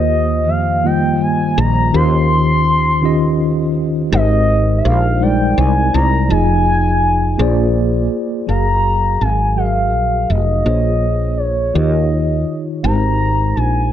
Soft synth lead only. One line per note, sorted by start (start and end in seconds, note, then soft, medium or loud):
0.00 0.51 D#5 loud
0.49 0.87 F5 medium
0.85 1.23 G5 medium
1.22 1.59 G#5 medium
1.58 1.93 A#5 loud
1.95 3.71 C6 loud
4.13 4.80 D#5 loud
4.78 4.87 E5 medium
4.85 5.23 F5 loud
5.22 5.59 G5 loud
5.58 5.95 G#5 loud
5.94 6.29 A#5 loud
6.30 8.07 G#5 loud
8.48 9.23 A#5 loud
9.21 9.58 G#5 loud
9.57 10.31 F5 medium
10.29 11.39 D#5 loud
11.38 11.75 C#5 medium
11.74 12.56 D#5 medium
12.83 13.57 A#5 loud
13.56 13.93 G#5 loud